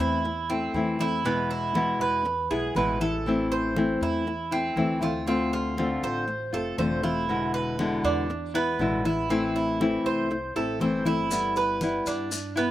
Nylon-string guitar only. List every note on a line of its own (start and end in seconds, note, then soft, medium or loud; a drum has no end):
0.00 0.23 E3 medium
0.00 0.24 A3 medium
0.00 0.24 C4 medium
0.00 0.24 E4 medium
0.25 muted nylon-string guitar stroke medium
0.50 0.75 A3 soft
0.50 0.74 C4 soft
0.50 0.74 E4 soft
0.74 0.99 E3 medium
0.74 0.99 A3 medium
0.74 0.99 C4 medium
0.74 0.99 E4 medium
1.00 1.25 A3 soft
1.00 1.24 C4 soft
1.00 1.24 E4 soft
1.25 1.73 B2 medium
1.25 1.74 E3 medium
1.25 1.74 G#3 medium
1.25 1.75 B3 medium
1.25 1.75 E4 medium
1.74 2.24 B2 medium
1.74 2.24 E3 medium
1.74 2.24 G#3 medium
1.74 2.24 B3 medium
1.74 2.25 E4 medium
2.25 muted nylon-string guitar stroke medium
2.50 2.75 G#3 soft
2.50 2.75 B3 soft
2.50 2.75 E4 medium
2.76 3.00 B2 medium
2.76 3.00 E3 medium
2.76 3.01 G#3 medium
2.76 3.01 B3 medium
2.76 3.00 E4 medium
3.01 3.26 G#3 soft
3.01 3.26 B3 soft
3.01 3.25 E4 soft
3.26 3.75 E3 medium
3.26 3.76 A3 medium
3.26 3.76 C4 medium
3.26 3.77 E4 medium
3.76 4.26 E3 medium
3.76 4.26 A3 medium
3.76 4.26 C4 medium
3.76 4.26 E4 medium
4.27 muted nylon-string guitar stroke medium
4.51 4.76 A3 soft
4.51 4.76 C4 medium
4.51 4.76 E4 soft
4.76 5.01 E3 medium
4.76 5.01 A3 medium
4.76 5.01 C4 medium
4.76 5.00 E4 medium
5.01 5.26 A3 soft
5.01 5.26 C4 soft
5.01 5.26 E4 soft
5.26 5.76 D3 medium
5.26 5.77 A3 medium
5.26 5.77 C4 medium
5.26 5.77 F4 medium
5.77 6.26 D3 medium
5.77 6.26 A3 medium
5.77 6.27 C4 medium
5.77 6.27 F4 medium
6.28 muted nylon-string guitar stroke medium
6.53 6.78 A3 soft
6.53 6.78 C4 soft
6.53 6.77 F4 medium
6.78 7.03 D3 medium
6.78 7.03 A3 medium
6.78 7.03 C4 medium
6.78 7.02 F4 medium
7.03 7.28 A3 soft
7.03 7.28 C4 soft
7.03 7.28 F4 soft
7.29 7.78 B2 medium
7.29 7.78 D3 medium
7.29 7.78 G#3 medium
7.29 7.79 B3 medium
7.29 7.79 E4 medium
7.79 8.28 B2 medium
7.79 8.28 D3 medium
7.79 8.29 G#3 medium
7.79 8.29 B3 medium
7.79 8.29 E4 medium
8.30 muted nylon-string guitar stroke medium
8.54 8.79 G#3 soft
8.54 8.79 B3 soft
8.54 8.78 E4 soft
8.80 9.04 B2 medium
8.80 9.04 D3 medium
8.80 9.04 G#3 medium
8.80 9.04 B3 medium
8.80 9.03 E4 medium
9.05 9.30 G#3 soft
9.05 9.29 B3 soft
9.05 9.29 E4 soft
9.30 9.79 E3 medium
9.30 9.79 A3 medium
9.30 9.80 C4 medium
9.30 9.80 E4 medium
9.80 10.30 E3 medium
9.80 10.30 A3 medium
9.80 10.30 C4 medium
9.80 10.30 E4 medium
10.31 muted nylon-string guitar stroke medium
10.56 10.80 A3 soft
10.56 10.80 C4 soft
10.56 10.80 E4 soft
10.80 11.05 E3 medium
10.80 11.05 A3 medium
10.80 11.05 C4 medium
10.80 11.04 E4 medium
11.05 11.30 A3 soft
11.05 11.30 C4 soft
11.05 11.30 E4 soft
11.31 11.80 G3 medium
11.31 11.81 B3 medium
11.31 11.81 E4 medium
11.81 12.30 G3 medium
11.81 12.31 B3 medium
11.81 12.31 E4 medium
12.31 muted nylon-string guitar stroke medium
12.56 12.71 B3 soft
12.56 12.71 E4 soft